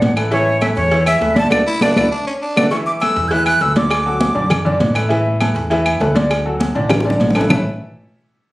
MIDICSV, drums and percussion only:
0, 0, Header, 1, 2, 480
1, 0, Start_track
1, 0, Key_signature, 3, "major"
1, 0, Tempo, 299252
1, 507, Time_signature, 4, 2, 24, 8
1, 13669, End_track
2, 0, Start_track
2, 0, Title_t, "Drums"
2, 28, Note_on_c, 9, 63, 87
2, 34, Note_on_c, 9, 66, 83
2, 34, Note_on_c, 9, 68, 76
2, 36, Note_on_c, 9, 56, 68
2, 189, Note_off_c, 9, 63, 0
2, 195, Note_off_c, 9, 66, 0
2, 195, Note_off_c, 9, 68, 0
2, 197, Note_off_c, 9, 56, 0
2, 270, Note_on_c, 9, 68, 109
2, 270, Note_on_c, 9, 75, 73
2, 272, Note_on_c, 9, 63, 35
2, 276, Note_on_c, 9, 56, 76
2, 430, Note_off_c, 9, 75, 0
2, 431, Note_off_c, 9, 68, 0
2, 433, Note_off_c, 9, 63, 0
2, 436, Note_off_c, 9, 56, 0
2, 504, Note_on_c, 9, 68, 87
2, 509, Note_on_c, 9, 56, 108
2, 519, Note_on_c, 9, 63, 37
2, 664, Note_off_c, 9, 68, 0
2, 669, Note_off_c, 9, 56, 0
2, 679, Note_off_c, 9, 63, 0
2, 765, Note_on_c, 9, 63, 36
2, 926, Note_off_c, 9, 63, 0
2, 985, Note_on_c, 9, 68, 102
2, 990, Note_on_c, 9, 75, 62
2, 991, Note_on_c, 9, 56, 75
2, 998, Note_on_c, 9, 63, 61
2, 1145, Note_off_c, 9, 68, 0
2, 1151, Note_off_c, 9, 56, 0
2, 1151, Note_off_c, 9, 75, 0
2, 1158, Note_off_c, 9, 63, 0
2, 1237, Note_on_c, 9, 56, 68
2, 1397, Note_off_c, 9, 56, 0
2, 1466, Note_on_c, 9, 56, 106
2, 1468, Note_on_c, 9, 68, 86
2, 1483, Note_on_c, 9, 63, 34
2, 1627, Note_off_c, 9, 56, 0
2, 1628, Note_off_c, 9, 68, 0
2, 1643, Note_off_c, 9, 63, 0
2, 1706, Note_on_c, 9, 68, 116
2, 1713, Note_on_c, 9, 63, 35
2, 1715, Note_on_c, 9, 75, 66
2, 1866, Note_off_c, 9, 68, 0
2, 1874, Note_off_c, 9, 63, 0
2, 1875, Note_off_c, 9, 75, 0
2, 1948, Note_on_c, 9, 56, 76
2, 1953, Note_on_c, 9, 63, 34
2, 2109, Note_off_c, 9, 56, 0
2, 2114, Note_off_c, 9, 63, 0
2, 2185, Note_on_c, 9, 63, 88
2, 2190, Note_on_c, 9, 68, 73
2, 2195, Note_on_c, 9, 56, 74
2, 2345, Note_off_c, 9, 63, 0
2, 2350, Note_off_c, 9, 68, 0
2, 2355, Note_off_c, 9, 56, 0
2, 2420, Note_on_c, 9, 56, 103
2, 2428, Note_on_c, 9, 65, 96
2, 2437, Note_on_c, 9, 63, 100
2, 2438, Note_on_c, 9, 75, 105
2, 2581, Note_off_c, 9, 56, 0
2, 2589, Note_off_c, 9, 65, 0
2, 2597, Note_off_c, 9, 63, 0
2, 2598, Note_off_c, 9, 75, 0
2, 2902, Note_on_c, 9, 56, 106
2, 2903, Note_on_c, 9, 63, 100
2, 2920, Note_on_c, 9, 65, 100
2, 2924, Note_on_c, 9, 75, 99
2, 3062, Note_off_c, 9, 56, 0
2, 3064, Note_off_c, 9, 63, 0
2, 3081, Note_off_c, 9, 65, 0
2, 3084, Note_off_c, 9, 75, 0
2, 3150, Note_on_c, 9, 63, 94
2, 3151, Note_on_c, 9, 56, 97
2, 3158, Note_on_c, 9, 65, 98
2, 3170, Note_on_c, 9, 75, 99
2, 3310, Note_off_c, 9, 63, 0
2, 3311, Note_off_c, 9, 56, 0
2, 3318, Note_off_c, 9, 65, 0
2, 3331, Note_off_c, 9, 75, 0
2, 4114, Note_on_c, 9, 56, 99
2, 4125, Note_on_c, 9, 65, 98
2, 4127, Note_on_c, 9, 75, 111
2, 4131, Note_on_c, 9, 63, 102
2, 4274, Note_off_c, 9, 56, 0
2, 4286, Note_off_c, 9, 65, 0
2, 4287, Note_off_c, 9, 75, 0
2, 4291, Note_off_c, 9, 63, 0
2, 4351, Note_on_c, 9, 56, 108
2, 4368, Note_on_c, 9, 63, 35
2, 4369, Note_on_c, 9, 68, 88
2, 4512, Note_off_c, 9, 56, 0
2, 4528, Note_off_c, 9, 63, 0
2, 4529, Note_off_c, 9, 68, 0
2, 4611, Note_on_c, 9, 63, 34
2, 4772, Note_off_c, 9, 63, 0
2, 4836, Note_on_c, 9, 56, 71
2, 4836, Note_on_c, 9, 68, 109
2, 4844, Note_on_c, 9, 75, 66
2, 4854, Note_on_c, 9, 63, 60
2, 4996, Note_off_c, 9, 56, 0
2, 4996, Note_off_c, 9, 68, 0
2, 5004, Note_off_c, 9, 75, 0
2, 5014, Note_off_c, 9, 63, 0
2, 5072, Note_on_c, 9, 56, 75
2, 5233, Note_off_c, 9, 56, 0
2, 5306, Note_on_c, 9, 56, 102
2, 5313, Note_on_c, 9, 68, 89
2, 5328, Note_on_c, 9, 63, 36
2, 5466, Note_off_c, 9, 56, 0
2, 5473, Note_off_c, 9, 68, 0
2, 5489, Note_off_c, 9, 63, 0
2, 5548, Note_on_c, 9, 68, 119
2, 5552, Note_on_c, 9, 63, 35
2, 5559, Note_on_c, 9, 75, 73
2, 5708, Note_off_c, 9, 68, 0
2, 5713, Note_off_c, 9, 63, 0
2, 5719, Note_off_c, 9, 75, 0
2, 5787, Note_on_c, 9, 56, 71
2, 5800, Note_on_c, 9, 63, 36
2, 5948, Note_off_c, 9, 56, 0
2, 5961, Note_off_c, 9, 63, 0
2, 6028, Note_on_c, 9, 56, 74
2, 6029, Note_on_c, 9, 68, 71
2, 6041, Note_on_c, 9, 63, 89
2, 6188, Note_off_c, 9, 56, 0
2, 6189, Note_off_c, 9, 68, 0
2, 6201, Note_off_c, 9, 63, 0
2, 6263, Note_on_c, 9, 56, 110
2, 6263, Note_on_c, 9, 68, 110
2, 6275, Note_on_c, 9, 75, 77
2, 6423, Note_off_c, 9, 56, 0
2, 6424, Note_off_c, 9, 68, 0
2, 6435, Note_off_c, 9, 75, 0
2, 6510, Note_on_c, 9, 63, 38
2, 6671, Note_off_c, 9, 63, 0
2, 6743, Note_on_c, 9, 56, 74
2, 6745, Note_on_c, 9, 68, 85
2, 6747, Note_on_c, 9, 63, 98
2, 6903, Note_off_c, 9, 56, 0
2, 6906, Note_off_c, 9, 68, 0
2, 6907, Note_off_c, 9, 63, 0
2, 6992, Note_on_c, 9, 63, 36
2, 7153, Note_off_c, 9, 63, 0
2, 7219, Note_on_c, 9, 56, 112
2, 7225, Note_on_c, 9, 68, 110
2, 7235, Note_on_c, 9, 63, 36
2, 7235, Note_on_c, 9, 64, 86
2, 7235, Note_on_c, 9, 75, 74
2, 7379, Note_off_c, 9, 56, 0
2, 7386, Note_off_c, 9, 68, 0
2, 7395, Note_off_c, 9, 75, 0
2, 7396, Note_off_c, 9, 63, 0
2, 7396, Note_off_c, 9, 64, 0
2, 7479, Note_on_c, 9, 63, 34
2, 7479, Note_on_c, 9, 64, 70
2, 7640, Note_off_c, 9, 63, 0
2, 7640, Note_off_c, 9, 64, 0
2, 7704, Note_on_c, 9, 56, 74
2, 7704, Note_on_c, 9, 66, 77
2, 7704, Note_on_c, 9, 68, 74
2, 7715, Note_on_c, 9, 63, 88
2, 7864, Note_off_c, 9, 56, 0
2, 7865, Note_off_c, 9, 66, 0
2, 7865, Note_off_c, 9, 68, 0
2, 7876, Note_off_c, 9, 63, 0
2, 7942, Note_on_c, 9, 68, 106
2, 7953, Note_on_c, 9, 75, 78
2, 7957, Note_on_c, 9, 56, 74
2, 7958, Note_on_c, 9, 63, 36
2, 8103, Note_off_c, 9, 68, 0
2, 8114, Note_off_c, 9, 75, 0
2, 8118, Note_off_c, 9, 56, 0
2, 8118, Note_off_c, 9, 63, 0
2, 8186, Note_on_c, 9, 56, 110
2, 8192, Note_on_c, 9, 68, 91
2, 8193, Note_on_c, 9, 63, 38
2, 8347, Note_off_c, 9, 56, 0
2, 8353, Note_off_c, 9, 63, 0
2, 8353, Note_off_c, 9, 68, 0
2, 8438, Note_on_c, 9, 63, 38
2, 8598, Note_off_c, 9, 63, 0
2, 8669, Note_on_c, 9, 56, 73
2, 8670, Note_on_c, 9, 75, 65
2, 8671, Note_on_c, 9, 68, 115
2, 8687, Note_on_c, 9, 63, 65
2, 8829, Note_off_c, 9, 56, 0
2, 8830, Note_off_c, 9, 75, 0
2, 8832, Note_off_c, 9, 68, 0
2, 8847, Note_off_c, 9, 63, 0
2, 8915, Note_on_c, 9, 56, 73
2, 9075, Note_off_c, 9, 56, 0
2, 9155, Note_on_c, 9, 68, 91
2, 9160, Note_on_c, 9, 63, 34
2, 9167, Note_on_c, 9, 56, 105
2, 9316, Note_off_c, 9, 68, 0
2, 9321, Note_off_c, 9, 63, 0
2, 9327, Note_off_c, 9, 56, 0
2, 9396, Note_on_c, 9, 75, 71
2, 9398, Note_on_c, 9, 68, 115
2, 9402, Note_on_c, 9, 63, 37
2, 9557, Note_off_c, 9, 75, 0
2, 9559, Note_off_c, 9, 68, 0
2, 9562, Note_off_c, 9, 63, 0
2, 9639, Note_on_c, 9, 56, 69
2, 9640, Note_on_c, 9, 63, 36
2, 9646, Note_on_c, 9, 66, 80
2, 9800, Note_off_c, 9, 56, 0
2, 9800, Note_off_c, 9, 63, 0
2, 9806, Note_off_c, 9, 66, 0
2, 9873, Note_on_c, 9, 56, 77
2, 9883, Note_on_c, 9, 68, 73
2, 9887, Note_on_c, 9, 63, 88
2, 10034, Note_off_c, 9, 56, 0
2, 10044, Note_off_c, 9, 68, 0
2, 10047, Note_off_c, 9, 63, 0
2, 10114, Note_on_c, 9, 56, 113
2, 10115, Note_on_c, 9, 68, 105
2, 10119, Note_on_c, 9, 75, 72
2, 10129, Note_on_c, 9, 63, 34
2, 10274, Note_off_c, 9, 56, 0
2, 10276, Note_off_c, 9, 68, 0
2, 10279, Note_off_c, 9, 75, 0
2, 10290, Note_off_c, 9, 63, 0
2, 10363, Note_on_c, 9, 63, 36
2, 10523, Note_off_c, 9, 63, 0
2, 10589, Note_on_c, 9, 68, 83
2, 10596, Note_on_c, 9, 63, 98
2, 10603, Note_on_c, 9, 56, 79
2, 10750, Note_off_c, 9, 68, 0
2, 10757, Note_off_c, 9, 63, 0
2, 10763, Note_off_c, 9, 56, 0
2, 10839, Note_on_c, 9, 63, 33
2, 10999, Note_off_c, 9, 63, 0
2, 11059, Note_on_c, 9, 65, 96
2, 11059, Note_on_c, 9, 68, 106
2, 11071, Note_on_c, 9, 56, 108
2, 11071, Note_on_c, 9, 60, 89
2, 11080, Note_on_c, 9, 75, 76
2, 11086, Note_on_c, 9, 63, 38
2, 11086, Note_on_c, 9, 64, 80
2, 11220, Note_off_c, 9, 65, 0
2, 11220, Note_off_c, 9, 68, 0
2, 11231, Note_off_c, 9, 56, 0
2, 11231, Note_off_c, 9, 60, 0
2, 11233, Note_on_c, 9, 60, 96
2, 11240, Note_off_c, 9, 75, 0
2, 11247, Note_off_c, 9, 63, 0
2, 11247, Note_off_c, 9, 64, 0
2, 11324, Note_on_c, 9, 63, 35
2, 11389, Note_on_c, 9, 61, 104
2, 11394, Note_off_c, 9, 60, 0
2, 11484, Note_off_c, 9, 63, 0
2, 11547, Note_on_c, 9, 56, 69
2, 11549, Note_off_c, 9, 61, 0
2, 11560, Note_on_c, 9, 66, 76
2, 11560, Note_on_c, 9, 68, 76
2, 11561, Note_on_c, 9, 63, 87
2, 11707, Note_off_c, 9, 56, 0
2, 11714, Note_on_c, 9, 61, 81
2, 11720, Note_off_c, 9, 66, 0
2, 11720, Note_off_c, 9, 68, 0
2, 11722, Note_off_c, 9, 63, 0
2, 11791, Note_on_c, 9, 75, 72
2, 11796, Note_on_c, 9, 56, 79
2, 11799, Note_on_c, 9, 63, 39
2, 11802, Note_on_c, 9, 66, 97
2, 11802, Note_on_c, 9, 68, 104
2, 11875, Note_off_c, 9, 61, 0
2, 11883, Note_on_c, 9, 61, 84
2, 11951, Note_off_c, 9, 75, 0
2, 11957, Note_off_c, 9, 56, 0
2, 11960, Note_off_c, 9, 63, 0
2, 11962, Note_off_c, 9, 66, 0
2, 11962, Note_off_c, 9, 68, 0
2, 12033, Note_on_c, 9, 64, 103
2, 12035, Note_on_c, 9, 75, 102
2, 12043, Note_off_c, 9, 61, 0
2, 12044, Note_on_c, 9, 61, 112
2, 12047, Note_on_c, 9, 66, 106
2, 12194, Note_off_c, 9, 64, 0
2, 12195, Note_off_c, 9, 75, 0
2, 12204, Note_off_c, 9, 61, 0
2, 12207, Note_off_c, 9, 66, 0
2, 13669, End_track
0, 0, End_of_file